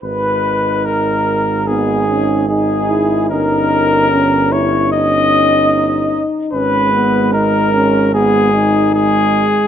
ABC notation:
X:1
M:4/4
L:1/8
Q:1/4=74
K:G#m
V:1 name="Cornet"
B2 A2 G2 G2 | A3 c d3 z | B2 A2 G2 G2 |]
V:2 name="Trumpet"
B2 A2 G2 G2 | A3 c d3 z | B2 A2 G2 G2 |]
V:3 name="French horn"
z4 B, C D E | D2 C E D4 | C B, D C B, D2 z |]
V:4 name="Trombone"
D4 D2 D2 | C4 C3 z | G,4 G,2 G,2 |]
V:5 name="Tuba" clef=bass
G,,,8 | =G,,,6- G,,, z | G,,,8 |]